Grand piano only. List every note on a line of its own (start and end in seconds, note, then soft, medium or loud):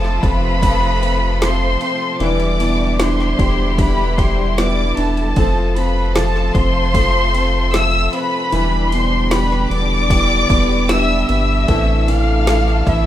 0.00 0.62 F3 medium
0.00 0.22 C4 medium
0.24 1.00 C4 medium
0.62 1.40 F3 medium
1.02 1.80 C4 medium
1.42 2.18 F3 medium
1.81 2.20 C4 medium
2.20 5.32 E3 medium
2.59 4.14 B2 medium
2.99 4.53 D4 medium
3.38 4.17 G4 medium
3.78 5.33 G3 medium
4.18 5.33 G4 medium
4.58 5.35 B3 medium
4.97 5.36 D4 medium
5.37 6.14 F3 medium
5.76 6.54 C4 medium
6.16 6.93 F3 medium
6.55 7.32 C4 medium
6.94 7.72 F3 medium
7.34 8.11 C4 medium
7.74 8.50 F3 medium
8.13 8.51 C4 medium
8.52 11.64 E3 medium
8.93 10.46 B2 medium
9.32 10.10 G4 medium
9.71 10.49 B3 medium
10.11 10.88 G4 medium
10.50 11.27 B3 medium
10.89 11.66 G4 medium
11.29 11.67 B3 medium
11.68 12.46 A3 medium
12.08 13.06 E3 medium
12.48 13.06 A3 medium
12.88 13.06 E4 medium